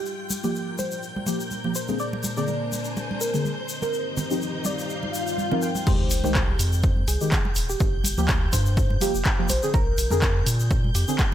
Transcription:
Already playing: F4 G4 G5 G6
0.06 A#3 D5, shaker
0.30 high conga, shaker
0.43 F3 A#3 G4, muted conga, shaker
0.55 A#4, shaker
0.78 C5, muted conga, high conga, shaker
0.91 shaker
1.03 shaker
1.16 high conga
1.26 F3 A#3 G4, muted conga, shaker
1.40 shaker
1.51 high conga, shaker
1.64 F3 A#3 G4, muted conga
1.75 D4 G#4 C5, shaker
1.88 D3 A#3 C4 G#4, high conga, shaker
1.99 D5, shaker
2.08 C5
2.13 muted conga
2.23 high conga, shaker
2.37 D3 A#3 C4 G#4 D5, shaker
2.48 muted conga, shaker
2.64 G#5
2.72 high conga, shaker
2.84 shaker
2.97 muted conga, shaker
3.11 high conga
3.21 A#4, shaker
3.34 D3 A#3 C4 G#4, muted conga, shaker
3.45 high conga, shaker
3.69 G3 D#4 F4 C5, shaker
3.82 A#4, muted conga, high conga, shaker
3.93 shaker
4.02 G4
4.17 muted conga, high conga, low conga, shaker
4.31 F3 C4 D#4 G4, shaker
4.42 shaker
4.65 D5 F5, muted conga, high conga, shaker
4.79 shaker
4.90 swell, shaker
5.03 muted conga, high conga
5.14 shaker
5.27 shaker
5.38 high conga, shaker
5.51 F3 C4 D#4 A#4, muted conga, low conga
5.62 G5, shaker
5.75 high conga, shaker
5.87 F1 D#3 G#3 G4 C5 G6, kick, crash, sub drop, shaker
6.11 F1, open hi-hat, shaker
6.24 C2 D#3 G#3 G4 C5, muted conga, shaker
6.35 kick, clap, shaker
6.59 F2, open hi-hat, shaker
6.72 shaker
6.83 kick, shaker
6.96 high conga
7.08 C2 G#4, open hi-hat, shaker
7.21 D#3 G#3 G4, shaker
7.32 kick, clap, shaker
7.45 muted conga
7.55 D#1, open hi-hat, shaker
7.69 G4, shaker
7.80 G1, kick, shaker
8.04 G1, open hi-hat, high conga, shaker
8.18 D2 F3 A#3 G4, muted conga, shaker
8.28 kick, clap, shaker
8.53 G2 C5, kick, open hi-hat, shaker
8.66 shaker
8.77 kick, shaker
8.90 muted conga
9.01 F3 A#3 G4, open hi-hat, high conga, shaker
9.14 F1, shaker
9.25 kick, clap, shaker
9.39 F3 A#3 G4
9.49 A#1 C5, open hi-hat, muted conga, shaker
9.63 D3 C4 G#4, shaker
9.74 A#1 A#4, kick, shaker
9.98 A#1, open hi-hat, shaker
10.11 F2 D3 C4 G#4 A#4, muted conga, shaker
10.22 kick, clap, shaker
10.46 A#2, open hi-hat, shaker
10.60 shaker
10.71 kick, shaker
10.84 high conga
10.95 F2 G4, open hi-hat, shaker
11.08 D3 C4 G#4, shaker
11.19 kick, clap, shaker

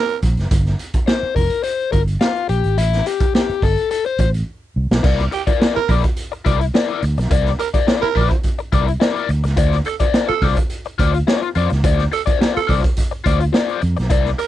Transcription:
Already playing: A#4
0.09 closed hi-hat
0.22 A#1, kick, closed hi-hat
0.37 F#1, snare, closed hi-hat
0.51 G1, kick, closed hi-hat
0.66 snare, closed hi-hat
0.79 closed hi-hat
0.94 muted fingered electric bass stroke, kick, closed hi-hat
1.07 C5, snare
1.23 muted fingered electric bass stroke
1.36 F1 A#4, kick, open hi-hat
1.50 closed hi-hat
1.63 C5, closed hi-hat
1.79 closed hi-hat
1.92 G1 A#4, kick, closed hi-hat
2.07 closed hi-hat
2.21 F4, snare
2.36 closed hi-hat
2.49 A#1 G4, closed hi-hat
2.64 G#1, closed hi-hat
2.78 A1 E4, closed hi-hat
2.93 snare, closed hi-hat
3.06 G4, closed hi-hat
3.20 muted fingered electric bass stroke, kick, closed hi-hat
3.35 G4, snare
3.49 muted fingered electric bass stroke, closed hi-hat
3.62 G1 A4, kick, open hi-hat
3.77 closed hi-hat
3.91 A4, closed hi-hat
4.05 C5, closed hi-hat
4.18 A1 C5, kick, closed hi-hat
4.34 closed hi-hat
4.76 C2
4.91 B1, snare
5.03 C2 E4 A#4 D5, kick, crash
5.19 snare, closed hi-hat
5.31 G4, muted overdriven electric guitar stroke, closed hi-hat
5.47 E4 A#4 D5, muted fingered electric bass stroke, kick, closed hi-hat
5.60 E4 A#4 D5, snare
5.75 A#4, muted overdriven electric guitar stroke, muted fingered electric bass stroke, closed hi-hat
5.89 A#1 E4 A#4 D5, kick, open hi-hat
6.04 muted overdriven electric guitar stroke, kick, closed hi-hat
6.17 closed hi-hat
6.32 muted overdriven electric guitar stroke, closed hi-hat
6.45 C2 E4 A#4 D5, kick, closed hi-hat
6.60 muted overdriven electric guitar stroke, closed hi-hat
6.74 E4 A#4 D5, snare
6.90 closed hi-hat
7.02 D2, muted overdriven electric guitar stroke, closed hi-hat
7.18 B1, muted overdriven electric guitar stroke, snare, closed hi-hat
7.31 C2 E4 A#4 D5, kick, closed hi-hat
7.46 snare, closed hi-hat
7.59 A#4, muted overdriven electric guitar stroke, closed hi-hat
7.74 E4 A#4 D5, muted fingered electric bass stroke, kick, closed hi-hat
7.87 E4 A#4 D5, snare
8.01 A#4, muted overdriven electric guitar stroke, muted fingered electric bass stroke, closed hi-hat
8.15 A#1 E4 A#4 D5, kick, open hi-hat
8.30 muted overdriven electric guitar stroke, kick, closed hi-hat
8.43 kick, closed hi-hat
8.58 muted overdriven electric guitar stroke, closed hi-hat
8.72 C2 E4 A#4 D5, kick, closed hi-hat
8.87 muted overdriven electric guitar stroke, closed hi-hat
9.00 E4 A#4 D5, snare
9.16 closed hi-hat
9.29 D2, muted overdriven electric guitar stroke, closed hi-hat
9.44 C#2, muted overdriven electric guitar stroke, snare, closed hi-hat
9.57 D2 F4 C5 D5, kick, closed hi-hat
9.72 snare, closed hi-hat
9.85 A4, muted overdriven electric guitar stroke, closed hi-hat
10.00 F4 C5 D5, muted fingered electric bass stroke, kick, closed hi-hat
10.13 F4 C5 D5, snare
10.28 A4, muted overdriven electric guitar stroke, muted fingered electric bass stroke, closed hi-hat
10.42 C2 F4 C5 D5, kick, open hi-hat
10.56 muted overdriven electric guitar stroke, kick, closed hi-hat
10.70 closed hi-hat
10.85 muted overdriven electric guitar stroke, closed hi-hat
10.98 D2 F4 C5 D5, kick, closed hi-hat
11.14 muted overdriven electric guitar stroke, closed hi-hat
11.27 F4 C5 D5, snare
11.42 muted overdriven electric guitar stroke, closed hi-hat
11.55 F2 F4 C5 D5, closed hi-hat
11.70 C#2, muted overdriven electric guitar stroke, snare, closed hi-hat
11.84 D2 F4 C5 D5, kick, closed hi-hat
11.99 snare, closed hi-hat
12.12 A4, muted overdriven electric guitar stroke, closed hi-hat
12.26 F4 C5 D5, muted fingered electric bass stroke, kick, closed hi-hat
12.40 F4 C5 D5, snare
12.54 A4, muted overdriven electric guitar stroke, muted fingered electric bass stroke, closed hi-hat
12.67 C2 F4 C5 D5, kick, open hi-hat
12.83 muted overdriven electric guitar stroke, kick, closed hi-hat
12.97 kick, closed hi-hat
13.11 muted overdriven electric guitar stroke, closed hi-hat
13.24 D2 F4 C5 D5, kick, closed hi-hat
13.40 muted overdriven electric guitar stroke, closed hi-hat
13.53 F4 C5 D5, snare
13.69 closed hi-hat
13.81 F2, muted overdriven electric guitar stroke, closed hi-hat
13.97 B1, muted overdriven electric guitar stroke, snare, closed hi-hat
14.10 C2 E4 A#4 D5, kick, closed hi-hat
14.25 snare, closed hi-hat
14.38 A#4, muted overdriven electric guitar stroke, closed hi-hat

